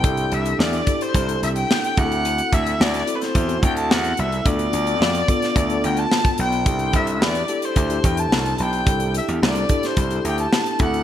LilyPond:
<<
  \new Staff \with { instrumentName = "Erhu" } { \time 4/4 \key c \major \tempo 4 = 109 g''8 e''8 d''8. c''8. e''16 g''8. fis''8~ | fis''8 e''8 d''8~ d''32 b'32 c''8. g''16 a''16 fis''8 e''8 | d''2~ d''8 g''16 a''8. g''8~ | g''8 e''16. e''32 d''8. c''8. g''16 a''8. g''8~ |
g''8 e''8 d''8. c''8. g''16 a''8. fis''8 | }
  \new Staff \with { instrumentName = "Tine electric piano" } { \time 4/4 \key c \major <d' e' g' a'>4~ <d' e' g' a'>16 r16 <d' e' g' a'>8 r16 <d' e' g' a'>4~ <d' e' g' a'>16 <c' e' fis' aes' a'>8~ | <c' e' fis' aes' a'>4~ <c' e' fis' aes' a'>16 r16 <c' e' fis' a'>8 r16 <c' e' fis' a'>4. r16 | <b d' f' a'>4~ <b d' f' a'>16 r16 <b d' f' a'>8 r16 <b d' f' a'>4. r16 | <d' e' g' a'>4~ <d' e' g' a'>16 r16 <d' e' g' a'>8 r16 <d' e' g' a'>4. r16 |
<d' e' g' a'>4~ <d' e' g' a'>16 r16 <d' e' g' a'>8 r16 <d' e' g' a'>4~ <d' e' g' a'>16 <c' e' fis' a'>8 | }
  \new Staff \with { instrumentName = "Slap bass" } { \clef bass \time 4/4 \key c \major c,8 c,8 e,8 r8 c,8 c,8 r8 d,8~ | d,8 d,8 d,8 r8 e,8 d,8 e,8 c,8 | d,8 d,8 f,8 r8 d,8 d,8 r8 b,,8 | c,8 c,8 e,8 r8 d,8 e,8 c,8 b,,8 |
c,8. e,16 c,8 r8 c,8 d,8 r8 d,8 | }
  \new DrumStaff \with { instrumentName = "Drums" } \drummode { \time 4/4 <hh bd>16 hh16 hh16 hh16 sn16 hh16 <hh bd>16 hh16 <hh bd>16 hh16 hh16 hh16 sn16 hh16 <hh bd>16 hh16 | hh16 hh16 <hh bd>16 hh16 sn16 <hh sn>16 hh16 <hh sn>16 <hh bd>16 hh16 <hh bd>16 hh16 sn16 hh16 hh16 hh16 | <hh bd>16 hh16 hh16 hh16 sn16 hh16 <hh bd>16 <hh sn>16 <hh bd>16 hh16 hh16 hh16 sn16 <hh bd>16 hh16 hh16 | <hh bd>16 hh16 <hh bd>16 hh16 sn16 hh16 hh16 hh16 <hh bd>16 hh16 <hh bd>16 hh16 sn16 hh16 hh16 hh16 |
<hh bd>16 hh16 hh16 hh16 sn16 hh16 <hh bd>16 <hh sn>16 <hh bd>16 hh16 hh16 hh16 sn16 hh16 <hh bd>16 hh16 | }
>>